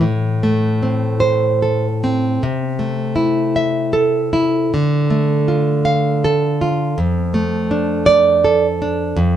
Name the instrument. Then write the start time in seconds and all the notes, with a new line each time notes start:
nylon-string guitar
0.01 A2
0.43 A3
0.83 C4
1.20 C5
1.62 A4
2.04 C4
2.43 C3
2.79 A3
3.16 E4
3.56 E5
3.93 A4
4.33 E4
4.74 D3
5.10 A3
5.48 F4
5.85 F5
6.24 A4
6.61 F4
6.98 F2
7.34 A3
7.71 D4
8.06 D5
8.45 A4
8.82 D4
9.17 F2